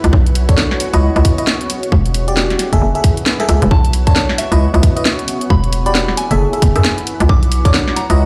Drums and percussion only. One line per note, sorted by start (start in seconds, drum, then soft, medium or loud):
0.04 closed hi-hat medium
0.13 kick loud
0.26 closed hi-hat medium
0.35 open hi-hat loud
0.49 kick loud
0.49 closed hi-hat medium
0.58 snare loud
0.71 snare soft
0.80 open hi-hat loud
0.94 closed hi-hat medium
1.16 closed hi-hat soft
1.25 kick loud
1.25 open hi-hat loud
1.38 closed hi-hat medium
1.47 snare loud
1.61 closed hi-hat medium
1.70 open hi-hat loud
1.83 closed hi-hat medium
1.92 kick loud
2.06 closed hi-hat medium
2.14 open hi-hat loud
2.28 closed hi-hat medium
2.37 snare loud
2.50 snare medium
2.50 closed hi-hat soft
2.59 snare soft
2.59 open hi-hat loud
2.73 kick medium
2.73 closed hi-hat medium
2.95 closed hi-hat soft
3.04 kick loud
3.04 open hi-hat loud
3.17 closed hi-hat medium
3.26 snare loud
3.40 snare soft
3.40 closed hi-hat medium
3.49 open hi-hat loud
3.62 closed hi-hat medium
3.71 kick loud
3.85 closed hi-hat medium
3.93 open hi-hat loud
4.07 kick loud
4.07 closed hi-hat medium
4.16 snare loud
4.29 snare medium
4.38 snare soft
4.38 open hi-hat loud
4.52 closed hi-hat medium
4.74 closed hi-hat soft
4.83 kick loud
4.83 open hi-hat loud
4.97 closed hi-hat medium
5.05 snare loud
5.19 closed hi-hat medium
5.28 open hi-hat loud
5.41 closed hi-hat medium
5.50 kick loud
5.64 closed hi-hat soft
5.73 open hi-hat loud
5.86 closed hi-hat medium
5.95 snare loud
6.08 snare medium
6.17 open hi-hat loud
6.31 closed hi-hat medium
6.53 closed hi-hat soft
6.62 kick loud
6.62 open hi-hat loud
6.76 closed hi-hat medium
6.85 snare loud
6.98 closed hi-hat medium
7.07 open hi-hat loud
7.20 closed hi-hat medium
7.29 kick loud
7.43 closed hi-hat medium
7.52 open hi-hat loud
7.65 kick loud
7.65 closed hi-hat medium
7.74 snare loud
7.88 snare medium
7.96 snare soft
7.96 open hi-hat loud
8.10 closed hi-hat medium